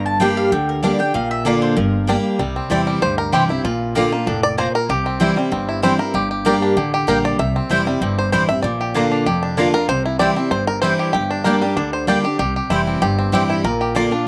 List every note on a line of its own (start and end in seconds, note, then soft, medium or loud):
0.00 0.28 G1 medium
0.00 0.49 G2 loud
0.06 0.20 A5 loud
0.20 0.50 G3 medium
0.20 0.28 G3 medium
0.20 0.50 A#3 medium
0.20 0.51 D4 medium
0.20 0.24 D4 medium
0.20 0.51 G4 loud
0.20 0.36 G5 medium
0.37 0.51 F5 loud
0.52 0.90 D2 medium
0.52 1.11 D3 loud
0.52 0.68 G5 medium
0.69 0.83 A#4 medium
0.83 0.99 G3 medium
0.83 0.91 G3 medium
0.83 0.99 A#3 medium
0.83 0.99 D4 medium
0.83 0.86 D4 medium
0.83 0.98 G4 loud
0.83 0.99 D5 loud
0.99 1.14 D4 soft
0.99 1.13 G4 medium
0.99 1.14 G5 loud
1.14 1.53 A#1 medium
1.14 1.74 A#2 loud
1.14 1.30 F5 medium
1.31 1.45 E5 loud
1.45 1.75 D3 loud
1.45 1.75 A#3 loud
1.45 1.53 A#3 medium
1.45 1.76 D4 loud
1.45 1.49 D4 medium
1.45 1.76 F4 loud
1.45 1.61 D5 medium
1.62 1.76 C5 loud
1.77 2.15 G1 loud
1.77 2.36 G2 medium
1.77 2.21 A#4 medium
2.07 2.37 G3 medium
2.07 2.16 G3 medium
2.07 2.38 A#3 medium
2.07 2.38 D4 medium
2.07 2.11 D4 medium
2.07 2.39 G4 loud
2.39 2.58 C2 loud
2.39 2.99 C3 medium
2.39 2.84 G3 medium
2.56 2.99 C4 medium
2.70 2.97 E2 medium
2.70 3.00 E3 medium
2.70 3.00 G3 medium
2.70 2.80 C4 medium
2.70 3.01 C4 loud
2.70 2.80 E4 medium
2.70 3.01 E4 loud
2.70 2.80 C5 medium
2.70 3.02 D5 loud
2.70 2.80 G5 medium
2.87 3.30 G3 medium
3.02 3.28 D2 medium
3.02 3.61 G2 medium
3.02 3.18 C5 loud
3.18 3.32 A#4 medium
3.32 3.60 C2 medium
3.32 3.49 E3 medium
3.32 3.49 G3 medium
3.32 3.42 C4 loud
3.32 3.49 C4 medium
3.32 3.42 E4 loud
3.32 3.48 E4 medium
3.32 3.65 G4 medium
3.32 3.43 C5 loud
3.32 3.43 G5 loud
3.49 3.65 C4 medium
3.49 3.64 E4 medium
3.64 4.03 A#1 medium
3.64 4.24 A#2 medium
3.64 3.93 F4 medium
3.95 4.11 D3 loud
3.95 4.05 A#3 medium
3.95 4.12 A#3 medium
3.95 4.12 D4 loud
3.95 4.05 F4 medium
3.95 4.11 F4 loud
3.95 4.40 G4 medium
3.95 4.05 D5 medium
3.95 4.05 A#5 medium
4.12 4.55 A#3 medium
4.12 4.27 D4 soft
4.12 4.26 F4 medium
4.27 4.65 F1 medium
4.27 4.57 A2 medium
4.27 4.43 D4 medium
4.43 4.58 D5 loud
4.58 4.88 A#2 medium
4.58 4.67 A#3 medium
4.58 4.67 F4 loud
4.58 4.75 C5 loud
4.58 4.68 D5 loud
4.58 4.68 A#5 loud
4.75 4.90 A#4 loud
4.89 5.27 C2 loud
4.89 5.49 C3 medium
4.89 5.22 G4 medium
5.06 5.49 C4 medium
5.20 5.36 E3 medium
5.20 5.36 G3 loud
5.20 5.30 C4 medium
5.20 5.37 C4 medium
5.20 5.30 E4 medium
5.20 5.36 E4 medium
5.20 5.35 E4 loud
5.20 5.30 C5 medium
5.20 5.30 G5 medium
5.36 6.77 G3 medium
5.36 5.52 C4 medium
5.36 5.51 E4 medium
5.52 5.90 G1 medium
5.52 6.11 G2 loud
5.52 5.96 C4 medium
5.69 5.83 E4 medium
5.82 5.99 E3 medium
5.82 5.99 G3 loud
5.82 5.92 C4 medium
5.82 5.99 C4 loud
5.82 5.92 E4 medium
5.82 5.98 E4 loud
5.82 5.93 C5 loud
5.82 5.99 C5 medium
5.82 5.93 G5 loud
5.99 6.14 C4 soft
5.99 6.13 E4 medium
5.99 6.15 A#4 medium
6.14 6.52 G1 medium
6.14 6.74 G2 medium
6.14 6.30 G4 medium
6.31 6.74 G4 medium
6.45 6.75 G3 medium
6.45 6.55 A#3 medium
6.45 6.75 A#3 medium
6.45 6.76 D4 loud
6.45 6.55 G4 medium
6.45 6.76 G4 medium
6.45 6.75 A#4 medium
6.45 6.55 D5 medium
6.45 6.55 G5 medium
6.62 7.05 D4 medium
6.77 7.03 A1 medium
6.77 7.36 D3 medium
6.77 6.93 G4 medium
6.94 7.09 G4 medium
7.07 7.34 A#1 medium
7.07 7.37 G3 medium
7.07 7.17 A#3 loud
7.07 7.38 A#3 medium
7.07 7.38 D4 medium
7.07 7.17 G4 medium
7.07 7.38 G4 loud
7.07 7.25 A#4 medium
7.07 7.18 D5 loud
7.07 7.18 G5 loud
7.25 7.38 D5 loud
7.39 7.58 C2 loud
7.39 7.99 C3 medium
7.39 7.68 E5 loud
7.56 7.99 C4 medium
7.70 7.97 F1 medium
7.70 7.86 E3 medium
7.70 7.86 G3 medium
7.70 7.80 C4 medium
7.70 7.87 C4 loud
7.70 8.15 E4 medium
7.70 7.80 E4 medium
7.70 7.85 E4 loud
7.70 7.80 C5 loud
7.70 7.80 G5 loud
7.86 8.30 G3 medium
7.86 8.02 C4 soft
7.86 8.01 E4 medium
8.01 8.28 G1 medium
8.01 8.61 G2 medium
8.01 8.46 C4 medium
8.18 8.31 C5 medium
8.32 8.59 A1 medium
8.32 8.48 E3 medium
8.32 8.49 G3 loud
8.32 8.42 C4 medium
8.32 8.49 C4 loud
8.32 8.42 E4 loud
8.32 8.48 E4 medium
8.32 8.48 C5 medium
8.32 8.42 C5 loud
8.32 8.43 G5 loud
8.49 8.64 C4 soft
8.49 8.63 E4 medium
8.49 8.62 E5 loud
8.62 9.02 A#1 medium
8.62 9.24 A#2 loud
8.62 8.92 D5 medium
8.81 9.24 G4 medium
8.94 9.25 D3 medium
8.94 9.05 A#3 medium
8.94 9.25 A#3 loud
8.94 9.10 D4 medium
8.94 9.26 D4 loud
8.94 9.05 F4 medium
8.94 9.26 F4 loud
8.94 9.05 D5 medium
8.94 9.05 A#5 loud
9.12 9.41 D4 medium
9.26 9.64 F1 medium
9.26 9.86 F2 medium
9.26 9.71 G4 medium
9.43 9.56 D4 medium
9.57 9.73 D3 medium
9.57 9.67 A#3 loud
9.57 9.74 A#3 loud
9.57 9.89 D4 medium
9.57 9.74 D4 loud
9.57 9.67 F4 loud
9.57 9.72 F4 medium
9.57 9.67 D5 loud
9.57 9.68 A#5 loud
9.73 9.89 D4 medium
9.73 9.88 F4 medium
9.73 9.88 A#4 loud
9.89 10.27 C2 loud
9.89 10.48 C3 loud
9.89 10.05 C5 loud
10.06 10.19 E4 medium
10.19 10.36 E3 medium
10.19 10.36 G3 loud
10.19 10.30 C4 medium
10.19 10.36 C4 medium
10.19 10.30 E4 medium
10.19 10.35 E4 loud
10.19 10.30 C5 medium
10.19 10.51 D5 loud
10.19 10.30 G5 loud
10.36 10.80 C4 medium
10.36 10.52 C4 soft
10.36 10.51 E4 medium
10.51 10.90 G1 medium
10.51 11.11 G2 medium
10.51 10.67 C5 loud
10.67 10.81 A#4 loud
10.82 11.12 E3 medium
10.82 11.13 G3 medium
10.82 10.92 C4 loud
10.82 11.13 C4 loud
10.82 10.92 E4 loud
10.82 11.13 E4 loud
10.82 11.11 C5 medium
10.82 10.92 C5 loud
10.82 10.92 G5 loud
10.99 11.13 G4 medium
11.13 11.52 G1 medium
11.13 11.74 G2 medium
11.13 11.44 G4 medium
11.31 11.74 D4 medium
11.44 11.61 G3 medium
11.44 11.55 A#3 medium
11.44 11.61 A#3 loud
11.44 11.62 D4 loud
11.44 11.55 G4 medium
11.44 11.60 G4 loud
11.44 11.74 A#4 medium
11.44 11.55 D5 loud
11.44 11.55 G5 loud
11.61 12.05 G3 medium
11.61 11.77 D4 medium
11.61 11.76 G4 medium
11.76 12.15 D2 medium
11.76 12.36 D3 loud
11.76 11.93 D4 medium
11.93 12.07 C5 medium
12.07 12.23 G3 medium
12.07 12.17 A#3 loud
12.07 12.24 A#3 medium
12.07 12.24 D4 medium
12.07 12.17 G4 loud
12.07 12.23 G4 loud
12.07 12.37 D5 medium
12.07 12.18 D5 loud
12.07 12.18 G5 loud
12.24 12.39 D4 medium
12.24 12.38 G4 medium
12.39 12.58 C2 medium
12.39 12.99 C3 loud
12.39 12.55 G4 medium
12.56 12.99 G4 medium
12.70 12.97 F1 medium
12.70 13.00 E3 loud
12.70 13.00 G3 medium
12.70 12.80 C4 medium
12.70 13.01 C4 medium
12.70 13.02 E4 medium
12.70 12.80 E4 medium
12.70 13.01 E4 medium
12.70 12.80 C5 medium
12.70 12.80 G5 medium
12.87 13.17 C4 medium
13.01 13.28 G1 medium
13.01 13.61 G2 loud
13.01 13.32 G4 medium
13.19 13.61 C4 medium
13.32 13.59 A1 medium
13.32 13.62 E3 medium
13.32 13.63 G3 medium
13.32 13.42 C4 medium
13.32 13.63 C4 loud
13.32 13.42 E4 medium
13.32 13.63 E4 loud
13.32 13.64 G4 medium
13.32 13.42 C5 loud
13.32 13.43 G5 loud
13.50 13.64 E4 medium
13.64 14.02 A#1 medium
13.64 14.24 A#2 medium
13.64 13.96 A#4 loud
13.81 14.24 G4 medium
13.95 14.11 D3 medium
13.95 14.05 A#3 medium
13.95 14.11 A#3 medium
13.95 14.12 D4 loud
13.95 14.05 F4 medium
13.95 14.10 F4 loud
13.95 14.05 D5 medium
13.95 14.25 D5 loud
13.95 14.05 A#5 loud
14.11 14.28 D4 medium
14.11 14.27 D4 medium
14.11 14.25 F4 medium